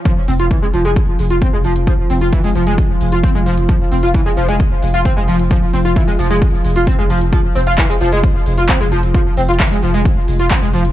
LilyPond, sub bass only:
\new Staff \with { instrumentName = "Sub bass" } { \clef bass \time 4/4 \key f \minor \tempo 4 = 132 r8 f,,16 f,,16 r8 f,,16 f,,16 r8 f,,16 f,,16 r16 f,,16 f,,16 f,,16 | r8 f,,16 f,,16 r8 f,,16 f,,16 r8 f,,16 f,,16 r16 f,,16 f,,16 f,,16 | r8 f,,16 f,,16 r8 f,,16 f,,16 r8 f,,16 f,,16 r16 f,,16 f,,16 f,,16 | r8 f,,16 f,,16 r8 f,,16 f,,16 r8 f,,16 f,,16 r16 f,,16 f,,16 f,,16 |
r8 f,,16 f,,16 r8 f,,16 f,,16 r8 f,,16 f,,16 r16 f,,16 f,,16 f,,16 | r8 f,,16 f,,16 r8 f,,16 f,,16 r8 f,,16 f,,16 r16 f,,16 f,,16 f,,16 | }